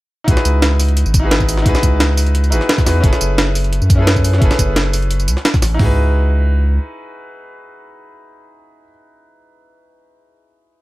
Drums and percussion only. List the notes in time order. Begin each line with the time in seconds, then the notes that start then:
0.28 kick, closed hi-hat
0.37 snare, tambourine
0.45 closed hi-hat, tambourine
0.62 snare, closed hi-hat
0.80 open hi-hat, tambourine
0.89 closed hi-hat
0.97 closed hi-hat
1.06 tambourine
1.14 kick, closed hi-hat, tambourine
1.31 snare, closed hi-hat
1.40 kick, tambourine
1.49 open hi-hat, tambourine
1.58 snare
1.66 kick, closed hi-hat
1.75 snare, tambourine
1.83 kick, closed hi-hat, tambourine
2.00 snare, closed hi-hat
2.17 open hi-hat, tambourine
2.27 closed hi-hat
2.35 closed hi-hat
2.44 closed hi-hat, tambourine
2.52 closed hi-hat, tambourine
2.61 snare
2.69 snare, closed hi-hat
2.78 kick, snare, tambourine
2.86 snare, open hi-hat, tambourine
3.04 kick, closed hi-hat
3.13 snare, tambourine
3.21 closed hi-hat, tambourine
3.38 snare, closed hi-hat
3.55 open hi-hat, tambourine
3.64 closed hi-hat
3.73 closed hi-hat
3.82 tambourine
3.90 kick, closed hi-hat, tambourine
4.07 snare, closed hi-hat
4.16 kick, tambourine
4.24 open hi-hat, tambourine
4.33 snare
4.42 kick, closed hi-hat
4.51 snare, tambourine
4.59 kick, closed hi-hat, tambourine
4.76 snare, closed hi-hat
4.93 open hi-hat, tambourine
5.02 closed hi-hat
5.11 closed hi-hat
5.20 closed hi-hat, tambourine
5.28 closed hi-hat, tambourine
5.37 snare
5.45 snare, closed hi-hat
5.54 kick, snare, tambourine
5.62 snare, open hi-hat, tambourine
5.79 kick, floor tom, open hi-hat